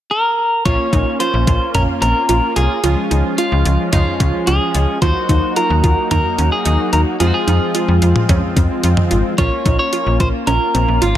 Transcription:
0.11 0.65 A#4 medium
0.65 0.77 A#1 loud
0.65 2.80 A#3 medium
0.65 2.80 C#4 medium
0.65 2.80 F4 medium
0.65 0.81 F4 medium
0.65 1.20 C#5 loud
0.65 kick loud
0.65 closed hi-hat medium
0.93 1.04 A#1 loud
0.93 1.08 D#4 medium
0.93 kick medium
0.93 closed hi-hat medium
1.20 1.35 F4 medium
1.20 1.71 C5 medium
1.20 closed hi-hat medium
1.34 1.45 A#1 loud
1.47 1.59 A#1 medium
1.47 1.63 F4 medium
1.47 kick medium
1.47 closed hi-hat medium
1.74 1.86 A#1 loud
1.74 1.90 C#4 medium
1.74 1.82 A#4 medium
1.74 closed hi-hat medium
1.74 mid tom medium
2.02 2.13 A#1 medium
2.02 2.17 C4 medium
2.02 2.56 A#4 medium
2.02 closed hi-hat medium
2.29 2.41 A#1 medium
2.29 2.44 F4 medium
2.29 closed hi-hat medium
2.56 2.68 C2 medium
2.56 2.72 F4 medium
2.56 3.34 G#4 medium
2.56 closed hi-hat medium
2.84 2.95 C#2 loud
2.84 4.98 F3 medium
2.84 4.98 G#3 medium
2.84 4.98 C#4 medium
2.84 2.99 F4 medium
2.84 4.98 F4 medium
2.84 closed hi-hat medium
3.11 3.23 C#2 medium
3.11 3.26 D#4 medium
3.11 closed hi-hat medium
3.38 3.53 F4 medium
3.38 3.89 F4 medium
3.38 closed hi-hat medium
3.52 3.63 C#2 medium
3.65 3.77 C#2 medium
3.65 3.81 F4 medium
3.65 closed hi-hat medium
3.93 4.04 C#2 loud
3.93 4.08 D#4 medium
3.93 4.49 F4 medium
3.93 closed hi-hat medium
3.93 mid tom medium
4.20 4.32 C#2 loud
4.20 4.35 C#4 medium
4.20 kick medium
4.20 closed hi-hat medium
4.47 4.59 C#2 medium
4.47 4.62 F4 medium
4.47 5.02 G#4 medium
4.47 closed hi-hat medium
4.75 4.86 C#2 medium
4.75 4.90 F4 medium
4.75 closed hi-hat medium
5.02 5.13 D#2 loud
5.02 7.16 F#3 medium
5.02 7.16 A#3 medium
5.02 7.16 D#4 medium
5.02 5.17 F4 medium
5.02 7.16 F#4 medium
5.02 5.53 C5 loud
5.02 kick loud
5.02 closed hi-hat medium
5.29 5.41 D#2 medium
5.29 5.44 D#4 medium
5.29 kick medium
5.29 closed hi-hat medium
5.56 5.72 F4 medium
5.56 6.10 A#4 medium
5.56 closed hi-hat medium
5.70 5.82 D#2 loud
5.84 5.95 D#2 medium
5.84 5.99 F4 medium
5.84 kick medium
5.84 closed hi-hat medium
6.11 6.23 D#2 loud
6.11 6.26 D#4 medium
6.11 6.52 A#4 medium
6.11 closed hi-hat medium
6.11 mid tom medium
6.38 6.50 D#2 medium
6.38 6.53 C#4 medium
6.38 closed hi-hat medium
6.52 6.92 G#4 medium
6.65 6.77 D#2 loud
6.65 6.81 D#4 medium
6.65 closed hi-hat medium
6.93 7.04 D#2 medium
6.93 7.08 D#4 medium
6.93 7.00 A#4 medium
6.93 closed hi-hat medium
7.20 7.32 F2 loud
7.20 9.34 F3 medium
7.20 9.34 G#3 medium
7.20 9.34 C4 medium
7.20 9.34 F4 medium
7.20 7.35 F4 medium
7.20 7.27 G#4 medium
7.20 closed hi-hat medium
7.27 7.34 F#4 medium
7.34 8.80 G#4 medium
7.47 7.59 F2 loud
7.47 7.63 D#4 medium
7.47 closed hi-hat medium
7.75 7.90 F4 medium
7.75 closed hi-hat medium
7.88 8.00 F2 loud
8.02 8.13 F2 medium
8.02 8.17 F4 medium
8.02 closed hi-hat medium
8.16 mid tom medium
8.29 8.41 F2 loud
8.29 8.44 C#4 medium
8.29 kick medium
8.29 closed hi-hat medium
8.29 mid tom medium
8.56 8.68 F2 loud
8.56 8.72 C4 medium
8.56 kick medium
8.56 closed hi-hat medium
8.83 8.95 F2 medium
8.83 8.99 F4 medium
8.83 closed hi-hat medium
8.97 mid tom medium
9.11 9.23 G#1 medium
9.11 9.26 F4 medium
9.11 closed hi-hat medium
9.38 9.50 A#1 loud
9.38 11.18 A#3 medium
9.38 11.18 C#4 medium
9.38 9.53 F4 medium
9.38 11.18 F4 medium
9.38 9.76 C#5 loud
9.38 kick loud
9.38 closed hi-hat medium
9.65 9.77 A#1 loud
9.65 9.81 D#4 medium
9.65 kick medium
9.65 closed hi-hat medium
9.79 10.17 C#5 medium
9.93 10.08 F4 medium
9.93 closed hi-hat medium
10.06 10.18 A#1 medium
10.20 10.32 A#1 medium
10.20 10.35 F4 medium
10.20 10.28 C5 medium
10.20 kick medium
10.20 closed hi-hat medium
10.47 10.59 A#1 loud
10.47 10.62 C#4 medium
10.47 11.03 A#4 medium
10.47 closed hi-hat medium
10.74 10.86 A#1 loud
10.74 10.90 C4 medium
10.74 closed hi-hat medium
10.88 11.00 A#1 medium
11.02 11.13 G#1 medium
11.02 11.17 F4 medium
11.02 11.18 F4 medium
11.02 closed hi-hat medium

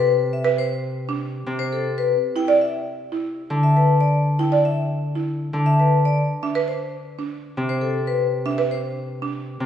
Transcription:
0.00 1.45 C3 medium
0.00 0.11 B4 medium
0.33 0.49 E5 medium
0.45 0.61 B4 medium
0.58 0.74 C5 medium
1.09 1.25 D4 soft
1.46 2.12 C3 medium
1.59 1.76 C5 medium
1.73 1.89 A4 medium
1.98 2.14 B4 medium
2.36 2.52 E4 medium
2.36 2.52 G5 medium
2.48 2.65 D5 medium
2.61 2.78 E5 soft
3.12 3.29 E4 soft
3.50 5.52 D3 medium
3.63 3.79 E5 medium
3.77 3.92 B4 soft
4.01 4.17 D5 medium
4.39 4.56 E4 soft
4.39 4.56 G5 soft
4.52 4.68 D5 medium
4.65 4.81 E5 soft
5.15 5.32 E4 soft
5.53 6.19 D3 soft
5.66 5.83 E5 medium
5.80 5.96 B4 soft
6.05 6.21 D5 medium
6.43 6.59 D4 medium
6.43 6.59 E5 soft
6.55 6.72 B4 medium
6.68 6.84 C5 medium
7.19 7.35 D4 soft
7.57 9.59 C3 soft
7.69 7.86 C5 medium
7.81 7.98 A4 medium
8.07 8.24 B4 medium
8.46 8.62 D4 medium
8.46 8.62 E5 medium
8.58 8.75 B4 medium
8.71 8.88 C5 medium
9.22 9.39 D4 soft
9.60 9.66 C3 medium

